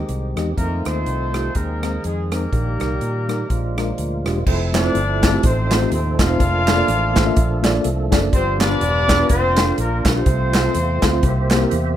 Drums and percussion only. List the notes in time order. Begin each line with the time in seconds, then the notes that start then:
0.09 closed hi-hat
0.37 cross-stick, closed hi-hat
0.58 kick, closed hi-hat
0.85 cross-stick, closed hi-hat
1.06 closed hi-hat
1.34 cross-stick, closed hi-hat
1.55 kick, closed hi-hat
1.83 cross-stick, closed hi-hat
2.04 closed hi-hat
2.32 cross-stick, closed hi-hat
2.53 kick, closed hi-hat
2.80 cross-stick, closed hi-hat
3.01 closed hi-hat
3.29 cross-stick, closed hi-hat
3.50 kick, closed hi-hat
3.78 cross-stick, closed hi-hat
3.98 closed hi-hat
4.26 cross-stick, closed hi-hat
4.47 kick, crash
4.74 snare, clap, closed hi-hat
4.95 closed hi-hat
5.23 kick, snare, clap, closed hi-hat
5.43 kick, closed hi-hat
5.71 snare, clap, closed hi-hat
5.92 closed hi-hat
6.19 kick, snare, clap, closed hi-hat
6.40 kick, closed hi-hat
6.67 snare, clap, closed hi-hat
6.88 closed hi-hat
7.16 kick, snare, clap, closed hi-hat
7.37 kick, closed hi-hat
7.64 snare, clap, closed hi-hat
7.84 closed hi-hat
8.12 kick, snare, clap, closed hi-hat
8.33 kick, closed hi-hat
8.60 snare, clap, closed hi-hat
8.81 closed hi-hat
9.09 kick, snare, clap, closed hi-hat
9.29 kick, closed hi-hat
9.57 snare, clap, closed hi-hat
9.78 closed hi-hat
10.05 kick, snare, clap, closed hi-hat
10.26 kick, closed hi-hat
10.54 snare, clap, closed hi-hat
10.74 closed hi-hat
11.02 kick, snare, clap, closed hi-hat
11.23 kick, closed hi-hat
11.50 snare, clap, closed hi-hat
11.71 closed hi-hat